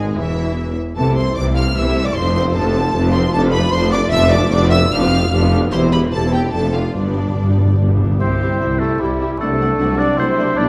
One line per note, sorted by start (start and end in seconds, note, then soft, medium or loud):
0.00 0.16 G#1 medium
0.00 0.17 G#1 medium
0.00 0.17 G#2 medium
0.00 0.17 G#3 medium
0.00 0.17 G#4 medium
0.17 0.75 E1 medium
0.17 0.76 E1 medium
0.17 0.76 E2 medium
0.17 0.77 E3 medium
0.17 0.76 E4 medium
0.17 0.76 E5 medium
0.96 1.32 C2 medium
0.96 1.31 C3 medium
0.96 1.52 C3 medium
0.96 1.06 E3 medium
0.96 1.06 C4 medium
0.96 1.15 A4 medium
0.96 1.15 A5 medium
1.08 1.17 A3 medium
1.08 1.17 E4 medium
1.16 1.27 E3 medium
1.16 1.27 C4 medium
1.16 1.35 C5 medium
1.16 1.36 C6 medium
1.27 1.36 A3 medium
1.27 1.36 E4 medium
1.35 1.71 C2 medium
1.35 1.70 C3 medium
1.35 1.46 E3 medium
1.35 1.46 C4 medium
1.35 1.56 D5 medium
1.35 1.44 D6 loud
1.47 1.56 A3 medium
1.47 1.56 E4 medium
1.54 1.67 E3 medium
1.54 1.67 C4 medium
1.54 1.62 F5 loud
1.54 1.75 F6 loud
1.67 1.76 A3 medium
1.67 1.77 E4 medium
1.75 2.11 C2 medium
1.75 2.10 C3 medium
1.75 1.86 E3 medium
1.75 1.86 C4 medium
1.75 2.05 E5 medium
1.75 2.06 E6 loud
1.88 1.97 A3 medium
1.88 1.97 E4 medium
1.97 2.06 E3 medium
1.97 2.06 C4 medium
2.05 2.16 A3 medium
2.05 2.16 E4 medium
2.05 2.15 D5 medium
2.05 2.15 D6 loud
2.14 2.50 F1 medium
2.14 2.50 F2 loud
2.14 2.25 F3 medium
2.14 2.25 C4 medium
2.14 2.35 C5 loud
2.14 2.34 C6 loud
2.26 2.35 A3 medium
2.26 2.35 F4 medium
2.35 2.45 F3 medium
2.35 2.45 C4 medium
2.35 2.55 C5 medium
2.35 2.43 C6 loud
2.45 2.55 A3 medium
2.45 2.55 F4 medium
2.53 2.90 F1 medium
2.53 2.90 F1 loud
2.53 2.89 F2 medium
2.53 2.64 F3 medium
2.53 2.64 C4 medium
2.53 3.13 A4 medium
2.53 3.12 A5 loud
2.64 2.75 A3 medium
2.64 2.74 F4 medium
2.75 2.85 F3 medium
2.75 2.84 C4 medium
2.83 2.94 A3 medium
2.83 2.94 F4 medium
2.93 3.29 F1 medium
2.93 3.29 F1 loud
2.93 3.28 F2 loud
2.93 3.03 F3 medium
2.93 3.04 C4 medium
3.05 3.14 A3 medium
3.05 3.14 F4 medium
3.14 3.24 F3 medium
3.14 3.24 C4 medium
3.14 3.22 C5 medium
3.14 3.33 C6 loud
3.25 3.34 A3 medium
3.25 3.34 F4 medium
3.33 3.68 F1 medium
3.33 3.68 F1 loud
3.33 3.68 F2 loud
3.33 3.44 F3 medium
3.33 3.44 D4 medium
3.33 3.52 A4 loud
3.33 3.41 A5 loud
3.45 3.54 A3 medium
3.45 3.54 F4 medium
3.52 3.64 F3 medium
3.52 3.64 D4 medium
3.52 3.72 B4 loud
3.52 3.72 B5 loud
3.65 3.73 A3 medium
3.65 3.74 F4 medium
3.71 4.07 F1 medium
3.71 4.07 F1 loud
3.71 4.06 F2 medium
3.71 3.82 F3 medium
3.71 3.82 D4 medium
3.71 3.91 C5 loud
3.71 3.91 C6 loud
3.84 3.93 A3 medium
3.84 3.93 F4 medium
3.92 4.02 F3 medium
3.92 4.02 D4 medium
3.92 4.11 D5 loud
3.92 3.99 D6 loud
4.02 4.12 A3 medium
4.02 4.12 F4 medium
4.11 4.46 F1 medium
4.11 4.47 F1 loud
4.11 4.46 F2 loud
4.11 4.21 F3 medium
4.11 4.21 D4 medium
4.11 4.31 E5 loud
4.11 4.31 E6 loud
4.22 4.32 A3 medium
4.22 4.31 F4 medium
4.30 4.42 F3 medium
4.30 4.42 D4 medium
4.30 4.50 D5 loud
4.30 4.49 D6 loud
4.42 4.52 A3 medium
4.42 4.52 F4 medium
4.50 4.86 F1 loud
4.50 4.86 F2 loud
4.50 4.61 D4 medium
4.50 4.61 G4 medium
4.50 4.71 D5 loud
4.50 4.58 D6 loud
4.62 4.72 B3 medium
4.62 4.72 F4 medium
4.70 4.82 D4 medium
4.70 4.82 G4 medium
4.70 4.78 E5 loud
4.70 4.91 E6 loud
4.83 4.92 B3 medium
4.83 4.92 F4 medium
4.90 5.26 F1 medium
4.90 5.27 F1 loud
4.90 5.26 F2 loud
4.90 5.01 D4 medium
4.90 5.01 G4 medium
4.90 5.51 F5 loud
4.90 5.52 F6 loud
5.02 5.12 B3 medium
5.02 5.11 F4 medium
5.12 5.21 D4 medium
5.12 5.22 G4 medium
5.21 5.31 B3 medium
5.21 5.31 F4 medium
5.30 5.67 F1 medium
5.30 5.67 F1 loud
5.30 5.67 F2 loud
5.30 5.41 D4 medium
5.30 5.41 G4 medium
5.42 5.52 B3 medium
5.42 5.52 F4 medium
5.52 5.62 D4 medium
5.52 5.62 G4 medium
5.62 5.72 B3 medium
5.62 5.72 F4 medium
5.71 6.08 E1 medium
5.71 6.08 E2 medium
5.71 5.82 E4 medium
5.71 5.81 G4 medium
5.71 5.91 C5 loud
5.71 5.80 C6 loud
5.83 5.93 C4 medium
5.83 5.92 E4 medium
5.91 6.02 E4 medium
5.91 6.03 G4 medium
5.91 5.99 B4 medium
5.91 6.00 B5 loud
6.03 6.13 C4 medium
6.03 6.13 E4 medium
6.12 6.48 E1 medium
6.12 6.49 E2 medium
6.12 6.23 E4 medium
6.12 6.23 G4 medium
6.12 6.33 A4 medium
6.12 6.33 A5 loud
6.24 6.34 C4 medium
6.24 6.34 E4 medium
6.34 6.42 E4 medium
6.34 6.53 G4 medium
6.34 6.44 G4 medium
6.34 6.42 G5 medium
6.43 6.53 C4 medium
6.43 6.53 E4 medium
6.52 6.90 F1 medium
6.52 6.90 F2 medium
6.52 6.62 A3 medium
6.52 6.63 D4 medium
6.52 6.74 A4 medium
6.52 6.73 A5 medium
6.64 6.74 C4 soft
6.64 6.74 F4 soft
6.74 6.84 A3 medium
6.74 6.84 D4 medium
6.74 6.96 F4 medium
6.74 6.95 F5 medium
6.83 6.95 C4 soft
6.83 6.95 F4 medium
6.94 7.32 G1 medium
6.94 7.02 G2 soft
6.94 7.33 G2 medium
6.94 7.05 G3 medium
6.94 7.05 D4 medium
6.94 7.79 D4 medium
6.94 7.77 D5 medium
7.03 7.10 G2 soft
7.03 7.17 B3 medium
7.03 7.17 G4 medium
7.11 7.18 G2 soft
7.15 7.27 G3 soft
7.15 7.26 D4 soft
7.20 7.26 G2 soft
7.27 7.34 G2 soft
7.27 7.38 B3 soft
7.27 7.37 G4 soft
7.35 7.74 G1 medium
7.35 7.40 G2 soft
7.35 7.74 G2 medium
7.35 7.48 G3 medium
7.35 7.48 D4 medium
7.42 7.49 G2 medium
7.47 7.57 G2 medium
7.47 7.58 B3 soft
7.47 7.58 G4 soft
7.58 7.64 G2 medium
7.58 7.69 G3 soft
7.58 7.69 D4 soft
7.65 7.72 G2 medium
7.65 7.79 B3 soft
7.65 7.79 G4 soft
7.74 7.80 G2 medium
7.78 8.15 G1 medium
7.78 8.16 G1 medium
7.78 8.15 G2 medium
7.78 7.88 G2 medium
7.78 7.88 G3 medium
7.78 7.88 D4 medium
7.88 7.95 G2 medium
7.88 8.00 B3 soft
7.88 7.99 G4 soft
7.97 8.03 G2 medium
7.97 8.10 G3 medium
7.97 8.10 D4 medium
8.04 8.11 G2 loud
8.11 8.19 G2 medium
8.11 8.21 B3 soft
8.11 8.19 G4 soft
8.19 8.55 C2 medium
8.19 8.56 C2 medium
8.19 8.55 C3 medium
8.19 9.36 G3 soft
8.19 8.76 C4 medium
8.19 9.36 E4 medium
8.19 8.29 E4 soft
8.19 8.28 G4 soft
8.19 8.58 G4 medium
8.19 8.81 C5 medium
8.19 8.27 E5 soft
8.41 8.49 E4 soft
8.41 8.49 G4 soft
8.41 8.49 E5 soft
8.60 8.96 C2 medium
8.60 8.96 C2 soft
8.60 8.96 C3 medium
8.60 9.40 E4 medium
8.60 8.69 E4 soft
8.60 8.69 G4 medium
8.60 8.69 E5 medium
8.79 9.01 A3 medium
8.79 8.89 E4 soft
8.79 8.89 G4 soft
8.79 9.02 A4 medium
8.79 8.89 E5 soft
9.00 9.36 C2 medium
9.00 9.35 C3 medium
9.00 9.40 G3 medium
9.00 9.09 E4 medium
9.00 9.40 G4 medium
9.00 9.09 G4 soft
9.00 9.09 E5 soft
9.20 9.28 E4 medium
9.20 9.28 G4 medium
9.20 9.29 E5 soft
9.38 9.75 C2 medium
9.38 9.74 C3 medium
9.38 10.58 F#3 medium
9.38 9.96 A3 medium
9.38 9.49 A3 medium
9.38 10.69 D4 medium
9.38 9.49 D4 medium
9.38 9.79 D4 medium
9.38 10.00 A4 medium
9.38 9.48 F#5 medium
9.59 9.68 A3 medium
9.59 9.67 D4 soft
9.59 9.68 F#5 medium
9.78 10.14 C2 medium
9.78 10.13 C3 medium
9.78 9.87 A3 medium
9.78 9.87 D4 medium
9.78 10.19 F#4 medium
9.78 9.87 F#5 medium
9.97 10.07 A3 soft
9.97 10.18 D4 medium
9.97 10.07 D4 soft
9.97 10.19 D5 medium
9.97 10.07 F#5 medium
10.17 10.53 C2 medium
10.17 10.54 C2 medium
10.17 10.53 C3 medium
10.17 10.26 A3 medium
10.17 10.55 C4 medium
10.17 10.26 D4 medium
10.17 10.69 E4 medium
10.17 10.59 C5 medium
10.17 10.27 F#5 medium
10.39 10.47 A3 medium
10.39 10.47 D4 medium
10.39 10.47 F#5 soft
10.56 10.69 B1 medium
10.56 10.69 B2 medium
10.56 10.66 G3 medium
10.56 10.69 G3 medium
10.56 10.69 D4 medium
10.56 10.66 D4 medium
10.56 10.69 D5 loud
10.56 10.66 G5 medium